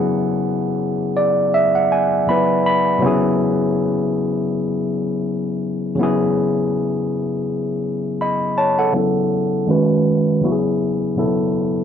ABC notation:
X:1
M:4/4
L:1/16
Q:"Swing 16ths" 1/4=81
K:E
V:1 name="Tine electric piano"
z6 =d2 e f g2 b2 b2 | z16 | z12 [db]2 [ca] [Af]- | [Af] z12 z3 |]
V:2 name="Tine electric piano"
[C,F,B,EG]12 [C,F,B,EB]4 | [^B,,C,F,=B,EG]16 | [C,F,B,EG]12- [C,F,B,EG]2 z2 | [C,F,B,EA]4 [D,G,CFB]4 [C,F,B,EFG]4 [B,,C,F,B,EA]4 |]